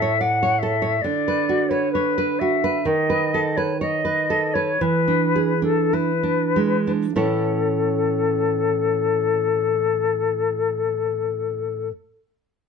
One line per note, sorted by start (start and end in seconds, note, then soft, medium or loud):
0.00 0.99 A2 soft
0.00 0.13 A4 soft
0.00 0.20 C#5 soft
0.00 0.22 E5 soft
0.21 0.40 D5 soft
0.21 0.60 F#5 soft
0.43 0.74 C#5 soft
0.59 0.95 A4 soft
0.59 1.03 E5 medium
0.82 1.03 C#5 soft
1.01 2.83 D3 soft
1.01 1.70 D5 medium
1.28 1.63 B4 soft
1.49 1.85 F#4 soft
1.69 1.94 B4 soft
1.69 1.92 C#5 soft
1.92 2.41 B4 soft
1.92 2.17 C#5 soft
2.18 2.54 B4 soft
2.39 2.77 F#4 soft
2.39 2.87 E5 soft
2.64 2.86 B4 soft
2.85 4.77 D#3 soft
2.85 3.58 D#5 soft
3.10 3.47 B4 soft
3.34 3.72 A4 soft
3.56 3.81 B4 soft
3.56 3.80 C#5 soft
3.81 4.04 C#5 soft
3.81 4.55 D#5 medium
4.05 4.45 B4 soft
4.30 4.71 A4 soft
4.54 4.81 B4 soft
4.54 4.83 C#5 soft
4.81 7.12 E3 soft
4.81 5.66 B4 medium
5.08 5.52 D4 soft
5.35 5.81 G#4 soft
5.62 6.10 D4 soft
5.62 5.95 A4 soft
5.93 6.23 E4 soft
5.93 6.90 B4 soft
6.23 6.74 D4 soft
6.56 7.05 G#3 soft
6.87 7.16 D4 soft
7.14 11.90 A2 soft
7.14 11.90 E3 soft
7.14 11.91 C#4 soft
7.14 11.91 E4 soft
7.14 11.89 A4 soft
7.14 11.91 A4 soft
7.14 11.91 C#5 soft